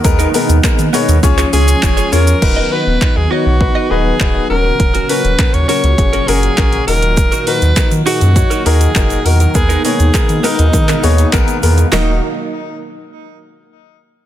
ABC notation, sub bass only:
X:1
M:4/4
L:1/16
Q:1/4=101
K:Ebm
V:1 name="Sub bass" clef=bass
E,,2 z E,, E, E, z E,, D,,2 D,,2 F,,,2 _F,,2 | ^D,,,2 z D,,, ^D,, D,, z =B,,,2 z D,,,2 D,,,2 E,,,2 | E,,,2 z E,,, E,, E,, z D,, G,,,2 G,,,2 B,,,2 E,,,2- | E,,,2 z E,, E, E, z G,,2 z E,,2 G,,,2 _F,,2 |
E,,2 z E,, E, E, z E,, E,2 E,,2 B,,, z _F,,2 | E,,,2 z12 z2 |]